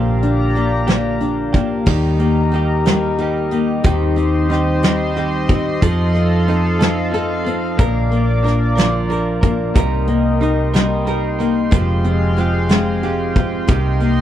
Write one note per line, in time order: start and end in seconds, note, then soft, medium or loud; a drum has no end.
0.00 1.83 A#1 medium
0.00 0.55 A#2 medium
0.00 0.55 D3 medium
0.00 0.53 F3 medium
0.00 0.55 A#3 medium
0.00 0.55 D4 medium
0.00 0.57 G4 medium
0.00 1.86 G4 medium
0.00 1.86 D5 medium
0.00 1.83 F5 medium
0.00 1.85 A#5 medium
0.22 1.19 D4 medium
0.22 closed hi-hat medium
0.55 0.87 F3 medium
0.55 0.87 A#3 medium
0.55 0.86 D4 medium
0.55 0.86 G4 medium
0.55 closed hi-hat soft
0.87 1.55 A#2 medium
0.87 1.54 D3 medium
0.87 1.54 F3 medium
0.87 1.55 A#3 medium
0.87 1.53 D4 medium
0.87 1.52 G4 medium
0.87 snare medium
0.87 closed hi-hat medium
1.21 1.93 D4 medium
1.21 closed hi-hat soft
1.53 1.87 F3 soft
1.53 1.86 A#3 soft
1.53 1.87 D4 medium
1.53 1.86 G4 medium
1.53 kick medium
1.53 closed hi-hat medium
1.86 3.80 D#2 medium
1.86 2.20 D#3 medium
1.86 2.20 G3 medium
1.86 2.20 A#3 medium
1.86 2.20 D#4 medium
1.86 5.78 G4 medium
1.86 2.19 G4 medium
1.86 3.82 A#4 medium
1.86 7.75 D#5 medium
1.86 3.83 A#5 medium
1.86 kick loud
1.86 crash medium
2.19 2.53 A#3 soft
2.19 2.53 D#4 soft
2.19 2.53 G4 medium
2.19 closed hi-hat medium
2.53 2.86 G3 medium
2.53 2.86 A#3 medium
2.53 2.86 D#4 medium
2.53 2.85 G4 medium
2.53 closed hi-hat soft
2.85 3.20 D#3 medium
2.85 3.18 G3 medium
2.85 3.19 A#3 medium
2.85 3.19 D#4 medium
2.85 3.19 G4 medium
2.85 snare loud
2.85 closed hi-hat medium
3.19 3.52 G3 medium
3.19 3.52 A#3 medium
3.19 3.53 D#4 medium
3.19 3.51 G4 medium
3.19 closed hi-hat soft
3.51 3.91 A#3 medium
3.51 3.85 D#4 medium
3.51 3.85 G4 medium
3.51 closed hi-hat medium
3.56 3.86 A#3 soft
3.84 5.78 D#2 medium
3.84 4.18 D#3 medium
3.84 4.18 G3 medium
3.84 4.18 C4 medium
3.84 4.18 D#4 medium
3.84 4.16 G4 loud
3.84 5.79 C5 medium
3.84 7.74 C6 medium
3.84 kick loud
3.84 closed hi-hat loud
4.17 4.50 C4 soft
4.17 4.50 D#4 medium
4.17 4.50 G4 medium
4.17 closed hi-hat medium
4.49 4.82 G3 medium
4.49 4.83 C4 medium
4.49 4.83 D#4 medium
4.49 4.82 G4 medium
4.49 snare soft
4.49 closed hi-hat soft
4.82 5.17 D#3 medium
4.82 5.15 G3 medium
4.82 5.16 C4 medium
4.82 5.16 D#4 medium
4.82 5.16 G4 medium
4.82 snare medium
4.82 closed hi-hat medium
5.16 5.49 G3 medium
5.16 5.49 C4 medium
5.16 5.49 D#4 medium
5.16 5.47 G4 medium
5.16 closed hi-hat soft
5.48 5.81 C4 soft
5.48 5.81 D#4 medium
5.48 5.81 G4 medium
5.48 kick medium
5.48 closed hi-hat medium
5.81 7.75 F2 medium
5.81 6.14 F3 medium
5.81 6.15 C4 medium
5.81 6.14 D#4 medium
5.81 6.12 A4 medium
5.81 7.77 A4 medium
5.81 9.72 F5 medium
5.81 kick loud
5.81 closed hi-hat loud
6.13 6.47 C4 soft
6.13 6.47 D#4 medium
6.13 6.47 A4 medium
6.13 closed hi-hat medium
6.47 6.80 F3 medium
6.47 6.80 C4 medium
6.47 6.79 D#4 medium
6.47 6.78 A4 medium
6.47 closed hi-hat soft
6.79 7.10 F3 medium
6.79 7.11 C4 medium
6.79 7.12 D#4 medium
6.79 7.12 A4 medium
6.79 snare loud
6.79 closed hi-hat medium
7.12 7.45 F3 medium
7.12 7.45 C4 medium
7.12 7.45 D#4 medium
7.12 7.43 A4 medium
7.12 closed hi-hat soft
7.44 7.78 C4 medium
7.44 7.79 D#4 soft
7.44 7.78 A4 medium
7.44 closed hi-hat medium
7.77 9.72 A#1 loud
7.77 8.11 A#2 medium
7.77 8.11 D3 medium
7.77 8.11 F3 medium
7.77 8.11 A#3 medium
7.77 8.11 D4 medium
7.77 8.10 A#4 medium
7.77 11.69 A#4 medium
7.77 9.74 D5 medium
7.77 9.74 D6 medium
7.77 kick loud
7.77 closed hi-hat loud
8.11 8.41 F3 medium
8.11 8.43 A#3 soft
8.11 8.44 D4 medium
8.11 8.44 A#4 medium
8.11 closed hi-hat soft
8.43 8.76 F3 medium
8.43 8.76 A#3 medium
8.43 8.75 D4 medium
8.43 8.74 A#4 medium
8.43 closed hi-hat medium
8.47 snare soft
8.76 9.10 A#2 medium
8.76 9.10 D3 medium
8.76 9.07 F3 medium
8.76 9.09 A#3 medium
8.76 9.09 D4 medium
8.76 9.09 A#4 medium
8.76 snare loud
8.76 closed hi-hat medium
9.09 9.42 F3 medium
9.09 9.43 A#3 medium
9.09 9.41 D4 medium
9.09 9.40 A#4 medium
9.09 closed hi-hat soft
9.41 9.75 F3 soft
9.41 9.74 A#3 soft
9.41 9.75 D4 soft
9.41 9.75 A#4 medium
9.41 kick medium
9.41 closed hi-hat medium
9.74 11.68 C2 medium
9.74 10.08 C3 medium
9.74 10.08 G3 medium
9.74 10.08 A#3 loud
9.74 10.08 D#4 medium
9.74 10.07 A#4 medium
9.74 11.71 D#5 medium
9.74 14.21 G5 medium
9.74 13.66 C6 medium
9.74 kick loud
9.74 closed hi-hat loud
10.08 10.41 A#3 soft
10.08 10.42 D#4 soft
10.08 10.41 A#4 medium
10.08 closed hi-hat medium
10.41 10.74 G3 medium
10.41 10.74 A#3 medium
10.41 10.73 D#4 medium
10.41 10.72 A#4 medium
10.41 closed hi-hat soft
10.74 11.08 C3 medium
10.74 11.04 G3 medium
10.74 11.05 A#3 medium
10.74 11.06 D#4 medium
10.74 11.07 A#4 medium
10.74 snare loud
10.74 closed hi-hat medium
11.05 11.39 G3 medium
11.05 11.39 A#3 medium
11.05 11.39 D#4 medium
11.05 11.38 A#4 medium
11.05 closed hi-hat medium
11.39 11.72 A#3 soft
11.39 11.73 D#4 soft
11.39 11.72 A#4 medium
11.39 closed hi-hat medium
11.71 13.65 F1 loud
11.71 12.04 F3 medium
11.71 12.05 G#3 medium
11.71 13.67 G#3 medium
11.71 12.05 C4 medium
11.71 12.05 F4 medium
11.71 12.04 G4 medium
11.71 13.67 F5 medium
11.71 kick loud
11.71 closed hi-hat loud
12.04 12.37 C4 soft
12.04 12.38 F4 medium
12.04 12.38 G4 medium
12.04 closed hi-hat medium
12.37 12.70 G#3 medium
12.37 12.71 C4 medium
12.37 12.70 F4 medium
12.37 12.69 G4 medium
12.37 closed hi-hat soft
12.69 13.04 F3 medium
12.69 13.02 G#3 medium
12.69 13.03 C4 medium
12.69 13.03 F4 medium
12.69 13.03 G4 medium
12.69 snare medium
12.69 closed hi-hat medium
13.03 13.36 G#3 medium
13.03 13.37 C4 medium
13.03 13.37 F4 medium
13.03 13.37 G4 medium
13.03 closed hi-hat soft
13.36 13.76 C4 medium
13.36 13.70 F4 medium
13.36 13.70 G4 medium
13.36 kick medium
13.36 closed hi-hat medium
13.40 13.70 C4 soft
13.68 14.21 C2 medium
13.68 14.02 C3 medium
13.68 14.02 G3 medium
13.68 14.03 A#3 medium
13.68 14.03 D#4 loud
13.68 14.01 G4 loud
13.68 14.21 A#4 medium
13.68 14.21 D#5 medium
13.68 14.21 C6 medium
13.68 kick loud
13.68 closed hi-hat loud
14.00 14.21 A#3 medium
14.00 14.21 D#4 medium
14.00 14.21 G4 medium
14.00 closed hi-hat medium
14.05 14.21 A#3 soft